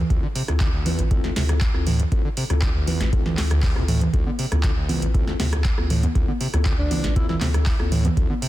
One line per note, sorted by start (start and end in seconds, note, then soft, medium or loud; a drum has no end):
0.10 0.21 D2 medium
0.10 0.18 D2 loud
0.10 0.24 C4 medium
0.10 0.23 E4 medium
0.10 0.24 F4 medium
0.10 0.24 A4 medium
0.10 kick loud
0.10 closed hi-hat medium
0.23 0.27 D3 medium
0.35 0.43 C3 medium
0.35 open hi-hat loud
0.48 0.52 D2 medium
0.48 0.78 D2 medium
0.48 0.69 C4 medium
0.48 0.69 E4 medium
0.48 0.69 F4 medium
0.48 0.69 A4 loud
0.48 cross-stick medium
0.48 closed hi-hat medium
0.60 0.68 D3 medium
0.60 kick loud
0.60 clap loud
0.60 closed hi-hat medium
0.73 0.87 D2 medium
0.86 1.00 E2 loud
0.86 1.07 C4 medium
0.86 1.07 E4 medium
0.86 1.07 F4 medium
0.86 1.07 B4 loud
0.86 open hi-hat loud
0.86 low conga medium
0.99 1.29 A1 medium
0.99 1.03 D2 loud
0.99 closed hi-hat medium
1.11 1.22 D2 medium
1.11 1.33 C4 loud
1.11 1.33 E4 medium
1.11 1.33 F4 medium
1.11 1.33 A4 loud
1.11 kick loud
1.11 closed hi-hat soft
1.24 1.31 D2 medium
1.24 snare soft
1.36 1.66 D2 medium
1.36 1.43 C3 medium
1.36 1.57 C4 medium
1.36 1.57 E4 medium
1.36 1.57 F4 medium
1.36 1.57 A4 medium
1.36 snare medium
1.36 open hi-hat loud
1.49 1.53 D2 medium
1.49 cross-stick medium
1.49 closed hi-hat medium
1.61 kick loud
1.61 clap loud
1.61 closed hi-hat medium
1.74 2.04 D2 medium
1.74 1.87 C4 medium
1.74 1.87 E4 medium
1.74 1.87 F4 medium
1.74 1.87 A4 medium
1.74 cross-stick medium
1.86 2.01 A2 medium
1.86 open hi-hat loud
1.86 low conga medium
1.99 2.04 D2 loud
1.99 closed hi-hat medium
2.12 2.22 D2 medium
2.12 2.20 D2 loud
2.12 2.25 C4 medium
2.12 2.25 E4 medium
2.12 2.25 F4 medium
2.12 2.25 A4 medium
2.12 kick loud
2.12 closed hi-hat soft
2.25 2.29 D3 medium
2.37 2.44 C3 medium
2.37 open hi-hat loud
2.50 2.54 D2 medium
2.50 2.80 D2 medium
2.50 2.71 C4 medium
2.50 2.71 E4 medium
2.50 2.71 F4 medium
2.50 2.71 A4 loud
2.50 cross-stick medium
2.50 closed hi-hat medium
2.62 2.69 D3 medium
2.62 kick loud
2.62 clap loud
2.62 closed hi-hat medium
2.75 2.89 D2 medium
2.87 3.02 E2 loud
2.87 3.08 C4 medium
2.87 3.08 E4 medium
2.87 3.08 F4 medium
2.87 3.08 B4 loud
2.87 open hi-hat loud
2.87 low conga medium
3.00 3.30 A1 medium
3.00 3.04 D2 loud
3.00 snare medium
3.00 closed hi-hat medium
3.13 3.23 D2 medium
3.13 3.35 C4 medium
3.13 3.35 E4 medium
3.13 3.35 F4 medium
3.13 3.35 A4 loud
3.13 kick loud
3.13 closed hi-hat soft
3.26 3.39 D2 medium
3.26 snare soft
3.26 low conga medium
3.38 3.42 D1 medium
3.38 3.68 D2 medium
3.38 3.59 C4 medium
3.38 3.59 E4 medium
3.38 3.59 F4 medium
3.38 3.59 A4 medium
3.38 snare medium
3.38 clap medium
3.38 open hi-hat loud
3.51 3.78 D2 loud
3.51 cross-stick medium
3.51 closed hi-hat medium
3.63 kick loud
3.63 clap loud
3.63 open hi-hat medium
3.76 4.06 D2 medium
3.76 3.83 D3 medium
3.76 3.89 C4 medium
3.76 3.89 E4 medium
3.76 3.89 F4 medium
3.76 3.89 A4 medium
3.76 cross-stick medium
3.88 4.03 A2 loud
3.88 open hi-hat loud
3.88 low conga medium
4.01 4.08 D1 medium
4.01 closed hi-hat medium
4.01 low conga medium
4.13 4.24 D2 medium
4.13 4.22 D2 loud
4.13 4.27 C4 medium
4.13 4.27 E4 medium
4.13 4.27 F4 medium
4.13 4.27 A4 medium
4.13 kick loud
4.13 closed hi-hat soft
4.27 4.31 D3 medium
4.27 high conga medium
4.39 4.46 C3 medium
4.39 open hi-hat loud
4.52 4.82 D2 medium
4.52 4.56 D2 medium
4.52 4.72 C4 medium
4.52 4.72 E4 medium
4.52 4.72 F4 medium
4.52 4.72 A4 loud
4.52 cross-stick medium
4.52 closed hi-hat medium
4.52 high conga soft
4.63 4.71 D3 medium
4.63 kick loud
4.63 clap loud
4.63 closed hi-hat medium
4.77 4.90 D2 medium
4.89 5.03 C2 medium
4.89 5.10 C4 medium
4.89 5.10 E4 medium
4.89 5.10 F4 medium
4.89 5.10 B4 loud
4.89 open hi-hat loud
4.89 high conga medium
4.89 low conga medium
5.02 5.32 A1 medium
5.02 5.06 D2 loud
5.02 closed hi-hat medium
5.14 5.25 D2 medium
5.14 5.37 C4 loud
5.14 5.37 E4 medium
5.14 5.37 F4 medium
5.14 5.37 A4 loud
5.14 kick loud
5.14 closed hi-hat soft
5.14 high conga soft
5.27 5.34 D2 medium
5.27 snare soft
5.40 5.70 D2 medium
5.40 5.47 C3 medium
5.40 5.61 C4 medium
5.40 5.61 E4 medium
5.40 5.61 F4 medium
5.40 5.61 A4 medium
5.40 snare medium
5.40 open hi-hat loud
5.40 high conga medium
5.53 5.57 D2 medium
5.53 cross-stick medium
5.53 closed hi-hat medium
5.64 kick loud
5.64 clap loud
5.64 closed hi-hat soft
5.78 6.08 D2 medium
5.78 5.90 C4 medium
5.78 5.91 E4 medium
5.78 5.90 F4 medium
5.78 5.91 A4 loud
5.78 cross-stick medium
5.78 high conga soft
5.90 6.04 A2 medium
5.90 open hi-hat loud
5.90 low conga medium
6.03 6.07 D2 loud
6.03 closed hi-hat medium
6.03 high conga medium
6.15 6.26 D2 medium
6.15 6.23 D2 loud
6.15 6.29 C4 medium
6.15 6.29 E4 medium
6.15 6.29 F4 medium
6.15 6.29 A4 medium
6.15 kick loud
6.15 closed hi-hat medium
6.28 6.32 D3 medium
6.28 high conga medium
6.40 6.48 C3 medium
6.40 open hi-hat loud
6.53 6.57 D2 medium
6.53 6.83 D2 medium
6.53 6.74 C4 medium
6.53 6.74 E4 medium
6.53 6.74 F4 medium
6.53 6.74 A4 loud
6.53 cross-stick medium
6.53 closed hi-hat medium
6.53 high conga soft
6.65 6.73 D3 medium
6.65 kick loud
6.65 clap loud
6.65 closed hi-hat medium
6.79 6.92 D2 medium
6.79 7.16 D4 loud
6.91 7.05 C2 medium
6.91 7.12 C4 medium
6.91 7.12 E4 medium
6.91 7.12 F4 medium
6.91 7.12 B4 loud
6.91 open hi-hat loud
6.91 high conga medium
6.91 low conga medium
7.04 7.34 A1 medium
7.04 7.08 D2 loud
7.04 snare medium
7.04 closed hi-hat medium
7.16 7.27 D2 medium
7.16 7.38 C4 loud
7.16 7.24 E4 medium
7.16 7.38 E4 medium
7.16 7.38 F4 medium
7.16 7.38 A4 loud
7.16 kick loud
7.16 closed hi-hat medium
7.16 high conga soft
7.29 7.36 D2 medium
7.29 7.37 E4 medium
7.29 snare soft
7.29 low conga medium
7.41 7.72 D2 medium
7.41 7.48 C3 medium
7.41 7.62 C4 medium
7.41 7.62 E4 medium
7.41 7.62 F4 medium
7.41 7.62 A4 medium
7.41 snare medium
7.41 clap medium
7.41 open hi-hat loud
7.41 high conga medium
7.54 7.58 D2 medium
7.54 cross-stick medium
7.54 closed hi-hat medium
7.66 kick loud
7.66 clap loud
7.66 open hi-hat medium
7.79 8.09 D2 medium
7.79 7.92 C4 medium
7.79 7.92 E4 medium
7.79 7.92 F4 medium
7.79 7.92 A4 medium
7.79 cross-stick medium
7.79 high conga soft
7.92 8.06 A2 medium
7.92 open hi-hat loud
7.92 low conga medium
8.05 8.09 D2 loud
8.05 closed hi-hat medium
8.05 high conga medium
8.05 low conga medium
8.17 8.28 D2 medium
8.17 8.25 D2 loud
8.17 8.30 C4 medium
8.17 8.30 E4 medium
8.17 8.30 F4 medium
8.17 8.30 A4 medium
8.17 kick loud
8.17 closed hi-hat medium
8.30 8.34 D3 medium
8.30 high conga medium
8.42 8.48 C3 medium
8.42 open hi-hat loud